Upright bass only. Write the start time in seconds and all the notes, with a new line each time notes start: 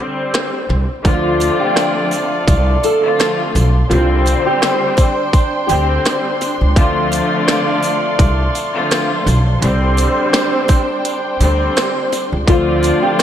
0.69 C2
1.05 D2
2.48 C2
3.55 B1
3.91 C2
5.69 D2
6.61 C#2
6.76 D2
8.19 C2
9.26 B1
9.62 C2
11.40 D2
12.32 C#2
12.48 D2